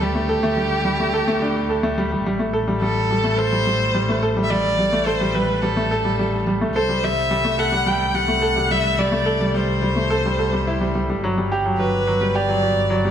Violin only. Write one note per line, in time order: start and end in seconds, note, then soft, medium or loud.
0.03 1.98 G4 medium
2.81 3.38 A4 medium
3.37 4.21 C5 medium
4.43 4.52 E5 medium
4.50 5.07 D5 medium
5.06 5.36 C5 medium
5.34 5.63 B4 medium
5.62 6.46 A4 medium
6.75 7.05 C5 medium
7.03 7.60 E5 medium
7.59 7.89 F#5 medium
7.87 8.16 G5 medium
8.15 8.72 F#5 loud
8.71 9.00 E5 medium
8.98 9.56 D5 medium
9.55 10.95 C5 medium
11.78 12.36 B4 medium
12.34 13.11 D5 medium